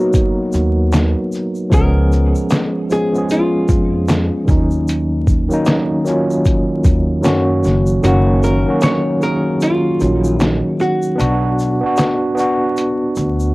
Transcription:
Already playing: tine electric piano F#3 A#3 B3 D#4 F#4 A#4 B4, hollow-body jazz guitar F#4
0.13 kick, closed hi-hat, shaker
0.52 upright bass D#2, shaker
0.54 shaker
0.92 snare, clap, closed hi-hat, shaker
1.32 shaker
1.34 shaker
1.55 shaker
1.70 upright bass C#2, tine electric piano F3 G#3 B3 C#4, kick, closed hi-hat, shaker
1.74 tine electric piano G#4, hollow-body jazz guitar A#4
2.12 shaker
2.35 shaker
2.50 snare, clap, closed hi-hat, shaker
2.90 tine electric piano F3 G#3 B3 C#4, hollow-body jazz guitar G#4, shaker
2.95 tine electric piano G#4
3.13 tine electric piano F3 G#3 B3 C#4, shaker
3.18 tine electric piano G#4
3.29 hollow-body jazz guitar F4, closed hi-hat, shaker
3.68 upright bass F2, kick, shaker
3.70 shaker
4.08 snare, clap, closed hi-hat, shaker
4.45 upright bass D#2, tine electric piano D#3 F#3 A#3 C#4, kick, shaker
4.50 tine electric piano D#4, shaker
4.71 shaker
4.88 closed hi-hat, shaker
5.27 kick, shaker
5.49 tine electric piano D#3 F#3 A#3 C#4, shaker
5.53 tine electric piano D#4
5.65 snare, clap, closed hi-hat, shaker
6.04 tine electric piano D#3 F#3 A#3 C#4, shaker
6.09 tine electric piano F4
6.31 shaker
6.45 kick, closed hi-hat, shaker
6.84 upright bass D#2, kick, closed hi-hat, shaker
6.86 shaker
7.21 tine electric piano D#3 F#3 A#3 C#4, shaker
7.25 upright bass F#2, tine electric piano F#4, snare, clap, closed hi-hat
7.64 upright bass F#1, snare, shaker
7.66 shaker
7.86 shaker
8.02 upright bass F#1, tine electric piano D#3 F#3 A#3 C#4, hollow-body jazz guitar F#4, closed hi-hat, shaker
8.08 tine electric piano F#4
8.43 hollow-body jazz guitar A#4, shaker
8.65 tine electric piano D#3 F#3 A#3 C#4
8.70 tine electric piano F#4
8.81 hollow-body jazz guitar C#5, snare, clap, closed hi-hat, shaker
9.20 tine electric piano D#3 F#3 A#3 C#4, hollow-body jazz guitar A#4, shaker
9.25 tine electric piano G#4
9.61 hollow-body jazz guitar F4, closed hi-hat, shaker
10.00 upright bass A#1, tine electric piano D#3 F#3, shaker
10.02 tine electric piano A#3 C#4 D#4, shaker
10.24 shaker
10.40 hollow-body jazz guitar D#4, snare, clap, closed hi-hat, shaker
10.80 hollow-body jazz guitar F#4, shaker
10.82 shaker
11.02 shaker
11.15 upright bass B1, tine electric piano B3 D4, shaker
11.20 tine electric piano F#4, closed hi-hat
11.59 shaker
11.81 tine electric piano B3 D4
11.86 tine electric piano F#4
11.97 snare, clap, closed hi-hat, shaker
12.35 tine electric piano B3 D4, shaker
12.40 tine electric piano F#4
12.77 closed hi-hat, shaker
13.16 upright bass D2, shaker
13.17 shaker
13.40 shaker

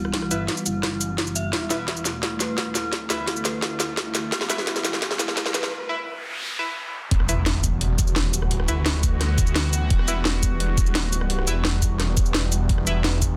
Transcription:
Already playing: detuned saw bass D1, analog synth pad E3 G3 B3 F#4
0.05 cross-stick
0.14 detuned saw bass C1, synth bell E4, kick, snare, closed hi-hat
0.22 cross-stick
0.31 detuned saw bass G1, synth bell E4, synth stab E4 B4 E5, closed hi-hat, cabasa
0.48 kick, snare, closed hi-hat
0.57 cabasa
0.66 detuned saw bass F#1, synth bell E4, closed hi-hat, cabasa
0.83 synth bell E4, kick, cross-stick, snare, closed hi-hat
1.01 closed hi-hat, cabasa
1.18 synth bell E4, kick, snare, closed hi-hat
1.27 cabasa
1.36 synth bell E5, closed hi-hat, cabasa
1.53 detuned saw bass E1, analog synth pad A3, synth bell E4, kick, snare, closed hi-hat, riser
1.70 detuned saw bass E1, synth stab E4 B4 E5, synth bell E4, snare, closed hi-hat, cabasa
1.88 kick, snare, closed hi-hat
1.97 cabasa
2.05 synth bell E4, snare, closed hi-hat, cabasa
2.23 synth bell E4, kick, snare, closed hi-hat
2.40 synth bell B4, snare, closed hi-hat, cabasa
2.58 synth bell E4, kick, snare, closed hi-hat
2.68 detuned saw bass D#1
2.75 synth bell E4, snare, closed hi-hat, cabasa
2.93 detuned saw bass D1, kick, snare, closed hi-hat
3.10 detuned saw bass D2, synth bell E4, synth stab E4 B4 E5, snare, closed hi-hat, cabasa
3.28 synth bell E4, kick, snare, closed hi-hat
3.36 cabasa
3.45 synth bell B4, snare, closed hi-hat, cabasa
3.62 synth bell E4, kick, snare, closed hi-hat
3.80 synth bell E4, snare, closed hi-hat, cabasa
3.97 kick, snare, closed hi-hat
4.15 synth bell E4, snare, closed hi-hat, cabasa
4.32 detuned saw bass E1, synth bell E4, kick, snare, closed hi-hat
4.41 snare
4.50 detuned saw bass E1, synth stab E4 B4 E5, synth bell B4, snare, closed hi-hat, cabasa
4.58 snare
4.67 synth bell E4, kick, snare, closed hi-hat
4.76 snare, cabasa
4.85 synth bell E4, snare, closed hi-hat, cabasa
4.93 snare
5.02 kick, snare, closed hi-hat
5.11 snare
5.19 synth bell E4, snare, closed hi-hat, cabasa
5.28 snare
5.37 synth bell E4, kick, snare, closed hi-hat
5.46 snare
5.54 synth bell B4, snare, closed hi-hat, cabasa
5.63 snare
5.72 noise sweep
5.89 synth stab E4 B4 E5
6.59 synth stab E4 B4 E5
7.11 detuned saw bass E1, analog synth pad E3 G3 B3 F#4, kick, closed hi-hat, impact
7.20 cross-stick
7.29 detuned saw bass E1, synth stab E4 B4 E5, closed hi-hat, cabasa
7.46 snare, closed hi-hat
7.64 kick, closed hi-hat, cabasa
7.81 closed hi-hat
7.99 kick, closed hi-hat, cabasa
8.07 cabasa
8.16 snare, closed hi-hat
8.26 detuned saw bass D#1
8.34 closed hi-hat, cabasa
8.42 cross-stick
8.51 detuned saw bass D1, closed hi-hat
8.60 cross-stick
8.68 detuned saw bass D2, synth stab E4 B4 E5, closed hi-hat, cabasa
8.86 snare, closed hi-hat
9.03 kick, closed hi-hat, cabasa
9.21 cross-stick, snare, closed hi-hat
9.38 kick, closed hi-hat, cabasa
9.47 cabasa
9.56 snare, closed hi-hat
9.73 closed hi-hat, cabasa
9.90 detuned saw bass E1, kick, closed hi-hat
9.99 cross-stick
10.08 detuned saw bass E1, synth stab E4 B4 E5, closed hi-hat, cabasa
10.25 snare, closed hi-hat
10.43 kick, closed hi-hat, cabasa
10.60 closed hi-hat
10.78 kick, closed hi-hat, cabasa
10.86 cabasa
10.95 snare, closed hi-hat
11.08 detuned saw bass D1
11.13 closed hi-hat, cabasa
11.21 cross-stick
11.30 detuned saw bass C1, closed hi-hat
11.39 cross-stick
11.47 detuned saw bass E1, synth stab E4 B4 E5, closed hi-hat, cabasa
11.65 snare, closed hi-hat
11.82 kick, closed hi-hat, cabasa
12.00 cross-stick, snare, closed hi-hat
12.17 kick, closed hi-hat, cabasa
12.26 cabasa
12.34 snare, closed hi-hat
12.52 closed hi-hat, cabasa
12.69 detuned saw bass E1, analog synth pad D4, kick, closed hi-hat
12.78 cross-stick
12.87 detuned saw bass E1, synth stab E4 B4 E5, closed hi-hat, cabasa
13.04 snare, closed hi-hat
13.22 kick, closed hi-hat, cabasa

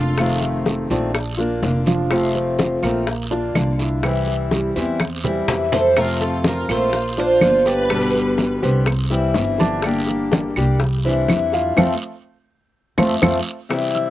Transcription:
Already playing: upright bass F1, steel-string acoustic guitar D3 A#3 D4 F4, grand piano F4 F5, violin section F4, cuban tres A4
0.18 steel-string acoustic guitar C3 D#3 A3 C4 F4, grand piano F3 F4, high bongo, high conga, long guiro, claves
0.42 high bongo, high conga
0.66 grand piano A3 A4, high bongo, high conga, short guiro
0.90 upright bass A#1, steel-string acoustic guitar D#3 A3 C4 F4, grand piano D4 D5, high conga, short guiro
1.14 muted steel-string acoustic guitar stroke, high bongo, high conga, long guiro, claves
1.37 grand piano A#3 A#4, steel-string acoustic guitar A#3 D4 F4, high bongo, high conga
1.62 upright bass F1, steel-string acoustic guitar D3 A#3 D4 F4, high bongo, low bongo, high conga, short guiro
1.86 grand piano F3 F4, high bongo, high conga, short guiro
2.11 steel-string acoustic guitar C3 F3 A3 C4 F4, high bongo, high conga, long guiro, claves
2.35 grand piano C4 C5, high bongo, high conga
2.59 high bongo, high conga, short guiro
2.82 upright bass A#1, steel-string acoustic guitar F3 A3 C4 F4, grand piano A#3 A#4, high conga, short guiro, claves
3.07 muted steel-string acoustic guitar stroke, high bongo, high conga, long guiro
3.31 steel-string acoustic guitar A#3 D4 F4, grand piano D4 D5, high bongo, high conga
3.55 upright bass C2, steel-string acoustic guitar D3 A#3 D4 F4, high bongo, low bongo, high conga, short guiro, claves
3.78 grand piano E4 E5, high bongo, high conga, short guiro
4.03 steel-string acoustic guitar C3 E3 G3 C4 E4, grand piano E3 E4, high bongo, high conga, long guiro, claves
4.27 high bongo, high conga
4.51 grand piano G3 G4, high bongo, high conga, short guiro
4.76 upright bass E2, steel-string acoustic guitar E3 G3 C4 E4, grand piano C4 C5, high conga, short guiro
5.00 muted steel-string acoustic guitar stroke, high bongo, high conga, long guiro, claves
5.24 steel-string acoustic guitar E3 G3 C4 E4, grand piano G3 G4, high bongo, low conga
5.48 upright bass F2, steel-string acoustic guitar E3 G3 C4 E4, high bongo, low conga, short guiro
5.72 violin section A4, cuban tres C5, low bongo, low conga, short guiro
5.96 steel-string acoustic guitar C3 F3 A3 C4 F4, violin section F4, cuban tres A#4, high bongo, high conga, long guiro, claves
6.20 grand piano C4 C5, violin section F4, cuban tres A4, high bongo, high conga
6.44 violin section F4, cuban tres A#4, high bongo, high conga, short guiro
6.69 upright bass A#1, steel-string acoustic guitar F3 A3 C4 F4, grand piano A#3 A#4, violin section F4, cuban tres C5, high conga, short guiro, claves
6.93 muted steel-string acoustic guitar stroke, high bongo, high conga, long guiro
7.17 steel-string acoustic guitar A#3 D4 F4, grand piano D4 D5, violin section F4, cuban tres C5, high bongo, high conga
7.41 upright bass G1, steel-string acoustic guitar D3 A#3 D4 F4, high bongo, low bongo, high conga, short guiro, claves
7.66 grand piano G4 G5, violin section B4, cuban tres D5, high bongo, high conga, short guiro
7.89 steel-string acoustic guitar B2 D3 G3 B3 G4, grand piano G3 G4, high bongo, high conga, long guiro, claves
8.14 high bongo, high conga
8.38 grand piano B3 B4, high bongo, high conga, short guiro
8.62 upright bass C2, steel-string acoustic guitar D3 G3 B3 G4, grand piano C4 C5, high conga, short guiro
8.86 muted steel-string acoustic guitar stroke, high bongo, high conga, long guiro, claves
9.10 steel-string acoustic guitar E3 G3 C4 E4, grand piano G3 G4, high bongo, high conga
9.34 upright bass G1, steel-string acoustic guitar E3 G3 C4 E4, high bongo, low bongo, high conga, short guiro
9.58 grand piano D3 D4, high bongo, high conga, short guiro
9.82 steel-string acoustic guitar D3 G3 A#3 D4, high bongo, high conga, long guiro, claves
9.86 steel-string acoustic guitar G4
10.07 grand piano A#3 A#4, high bongo, high conga
10.32 high bongo, high conga, short guiro
10.56 upright bass C2, grand piano G3 G4, steel-string acoustic guitar G3 A#3 D4 G4, high conga, short guiro, claves
10.80 muted steel-string acoustic guitar stroke, high bongo, high conga, long guiro
11.05 steel-string acoustic guitar E3 G3 D4 E4, grand piano C4 C5, high bongo, high conga
11.28 upright bass F2, steel-string acoustic guitar E3 G3 D4 E4, high bongo, low bongo, high conga, short guiro, claves
11.52 grand piano F4 F5, high bongo, high conga, short guiro
11.77 upright bass F2, steel-string acoustic guitar F3 A3 C4, grand piano A3 C4 F4, low bongo, high conga, long guiro, claves
12.98 upright bass F2, steel-string acoustic guitar F3 A3 C4, grand piano A3 C4 F4, low bongo, high conga, long guiro, claves
13.22 upright bass F2, steel-string acoustic guitar F3 A3 C4, grand piano A3 C4 F4, low bongo, high conga, long guiro, claves
13.69 steel-string acoustic guitar C3 E3 G3 C4 E4, high bongo, high conga, long guiro, claves
13.94 grand piano E4 E5 E6, high conga

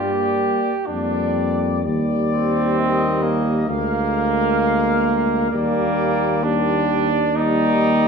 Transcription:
Already playing: tuba G2, euphonium G3, trombone section A#3, flugelhorn G4, trumpet section D5
0.86 tuba F2, euphonium G3, trombone section A#3, flugelhorn D4, trumpet section D5
1.84 tuba D#2, euphonium G3, trombone section A#3, trumpet section D5
2.31 flugelhorn C4
2.78 trumpet section D#5
3.23 flugelhorn A#3
3.68 tuba D2, euphonium G#3, trombone section A#3, flugelhorn A#3, trumpet section F5
5.50 tuba D#2, euphonium G3, flugelhorn A#3, trombone section A#3, trumpet section D5
6.43 euphonium G3, trombone section A#3, flugelhorn D4, trumpet section D5
7.36 euphonium G3, trombone section A#3, flugelhorn D#4, trumpet section D5

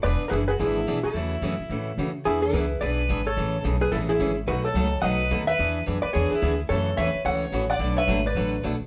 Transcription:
0.03 upright bass E1, steel-string acoustic guitar E3 B3 D4 G#4, hollow-body jazz guitar B4 D5, fiddle B4
0.28 upright bass F#1, steel-string acoustic guitar E3, fiddle F#4, hollow-body jazz guitar G#4 A#4 B4
0.33 steel-string acoustic guitar B3 D4 G#4, fiddle E4
0.48 fiddle F#4, hollow-body jazz guitar G#4 B4
0.59 upright bass G#1, steel-string acoustic guitar E3 B3 D4 G#4, hollow-body jazz guitar E4 G#4, fiddle E4
0.87 upright bass B1, steel-string acoustic guitar E3 B3 D4 G#4
1.03 fiddle E4, hollow-body jazz guitar F#4 A4, muted upright bass stroke
1.14 upright bass E2, steel-string acoustic guitar C#3 E3 A3 C#4 F#4
1.42 upright bass F#2, steel-string acoustic guitar C#3 E3 A3 C#4 F#4
1.59 muted upright bass stroke
1.69 upright bass A2, steel-string acoustic guitar C#3 E3 A3 C#4 F#4
1.98 upright bass C#3, steel-string acoustic guitar C#3 E3 A3 C#4 F#4
2.25 upright bass E2, steel-string acoustic guitar E3 B3 D4 G#4, fiddle E4, hollow-body jazz guitar E4 G#4
2.42 fiddle E4, hollow-body jazz guitar G#4 B4
2.53 upright bass C#2, steel-string acoustic guitar E3 B3 D4 G#4
2.81 upright bass B1, steel-string acoustic guitar E3 B3 D4 G#4, fiddle B4, hollow-body jazz guitar B4 D5
3.09 upright bass G#1, steel-string acoustic guitar E3 B3 D4 G#4
3.26 fiddle A4, hollow-body jazz guitar A4 C#5
3.37 upright bass A1, steel-string acoustic guitar C#3 E3 A3 C#4 G#4
3.64 upright bass B1, steel-string acoustic guitar C#3 E3 A3 C#4 G#4
3.81 fiddle G#4, hollow-body jazz guitar G#4 B4
3.92 upright bass A1, steel-string acoustic guitar C#3 E3 A3 C#4 G#4, fiddle E4, hollow-body jazz guitar E4 A4
4.09 fiddle E4, hollow-body jazz guitar E4 G#4
4.19 upright bass G#1, steel-string acoustic guitar C#3 E3 A3 C#4 G#4
4.47 upright bass B1, steel-string acoustic guitar B2 F#3 A3 D#4 F#4, hollow-body jazz guitar F#4 B4, fiddle F#4
4.64 fiddle A4, hollow-body jazz guitar A4 C#5
4.74 upright bass C#2, steel-string acoustic guitar B2 F#3 A3 D#4 F#4
5.02 upright bass B1, steel-string acoustic guitar B2 F#3 A3 D#4 F#4, fiddle B4, hollow-body jazz guitar D#5 F#5
5.31 upright bass D#2, steel-string acoustic guitar B2 F#3 A3 D#4 F#4
5.46 fiddle B4, hollow-body jazz guitar B4 E5
5.59 upright bass E2, steel-string acoustic guitar E3 B3 D4 G#4
5.86 upright bass F#2, steel-string acoustic guitar E3 B3 D4 G#4
6.02 hollow-body jazz guitar B4 D5, fiddle B4, muted upright bass stroke
6.13 upright bass E2, steel-string acoustic guitar E3 B3 D4 G#4, hollow-body jazz guitar G#4 C#5, fiddle G#4
6.30 fiddle E4, hollow-body jazz guitar G#4 B4, muted upright bass stroke
6.42 upright bass D2, steel-string acoustic guitar E3 B3 D4 G#4
6.69 upright bass F#2, steel-string acoustic guitar C#3 E3 A3 C#4 F#4, hollow-body jazz guitar A4 C#5, fiddle A4
6.97 upright bass E2, steel-string acoustic guitar C#3 E3 A3 C#4 F#4, fiddle B4, hollow-body jazz guitar C#5 E5
7.15 muted upright bass stroke
7.25 upright bass C#2, steel-string acoustic guitar C#3 E3 A3 C#4 F#4, hollow-body jazz guitar C#5 F#5, fiddle C#5
7.52 upright bass A1, steel-string acoustic guitar C#3 E3 A3 C#4 F#4
7.70 hollow-body jazz guitar D5 F#5, fiddle D5
7.79 upright bass B1, steel-string acoustic guitar B2 F#3 A3 D4 F#4
7.97 fiddle B4, hollow-body jazz guitar C#5 E5
8.07 upright bass G#1, steel-string acoustic guitar B2 F#3 A3 D4 F#4
8.26 hollow-body jazz guitar B4 D5, fiddle B4
8.35 upright bass A1, steel-string acoustic guitar B2 F#3 A3 D4 F#4
8.63 upright bass B1, steel-string acoustic guitar B2 F#3 A3 D4 F#4
8.80 muted upright bass stroke

